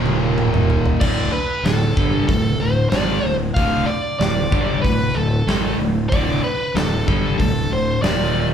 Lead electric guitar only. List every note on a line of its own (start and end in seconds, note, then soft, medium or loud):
1.00 1.32 D5 medium
1.33 1.66 B4 medium
1.64 2.26 A4 medium
2.27 2.58 A4 medium
2.60 2.89 C5 medium
2.90 3.36 D5 medium
3.54 3.88 F5 loud
3.86 4.18 D5 medium
4.20 4.81 D5 medium
4.82 5.16 B4 medium
5.15 5.75 A4 medium
6.09 6.40 D5 medium
6.44 6.77 B4 medium
6.75 7.37 A4 medium
7.38 7.72 A4 medium
7.73 8.02 C5 medium
8.02 8.47 D5 medium